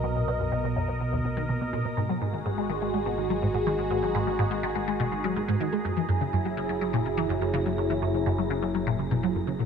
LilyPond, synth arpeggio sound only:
\new Staff \with { instrumentName = "Synth arpeggio sound" } { \clef bass \time 4/4 \key gis \minor \tempo 4 = 124 b,16 ais,16 b,16 fis,16 b,16 b,16 fis,16 b,16 b,16 dis,16 b,16 dis16 b,16 b,16 ais,16 b,16 | gis,16 fis16 gis,16 dis16 gis,16 gis16 dis16 gis16 gis16 b,16 dis16 fis16 gis,16 gis,16 dis16 gis16 | gis,16 fis16 gis,16 dis16 gis,16 gis16 dis16 gis16 gis16 b,16 dis16 fis16 gis,16 gis,16 dis16 gis16 | fis,16 e16 fis,16 cis16 fis,16 fis16 cis16 fis16 fis16 ais,16 cis16 e16 fis,16 fis,16 cis16 fis16 |
fis,16 e16 fis,16 cis16 fis,16 fis16 cis16 fis16 fis16 ais,16 cis16 b,16 fis16 fis,16 cis16 ais,16 | }